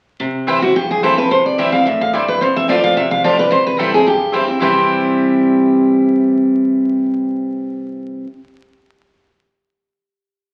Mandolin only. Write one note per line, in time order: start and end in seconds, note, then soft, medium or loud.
0.47 0.57 C4 loud
0.47 0.57 E4 medium
0.47 0.58 C5 loud
0.47 0.58 G5 loud
1.03 1.13 C4 medium
1.03 1.13 E4 medium
1.03 1.13 C5 medium
1.03 1.13 G5 loud
1.58 1.68 C4 loud
1.58 1.68 E4 loud
1.58 1.69 C5 loud
1.58 1.69 G5 loud
2.13 2.23 C4 loud
2.13 2.24 E4 medium
2.13 2.24 C5 medium
2.13 2.24 G5 medium
2.68 2.78 C4 loud
2.68 2.79 F4 loud
2.68 2.79 C5 loud
2.68 2.79 A5 loud
3.24 3.34 C4 medium
3.24 3.34 F4 medium
3.24 3.34 C5 medium
3.24 3.34 A5 loud
3.78 3.88 C4 medium
3.78 3.88 E4 medium
3.78 3.89 C5 medium
3.78 3.89 G5 loud
4.32 4.43 C4 medium
4.32 4.43 E4 medium
4.32 4.43 C5 medium
4.32 4.43 G5 loud
4.59 8.22 C4 medium
4.59 8.24 E4 medium
4.59 8.25 C5 loud
4.59 8.26 G5 loud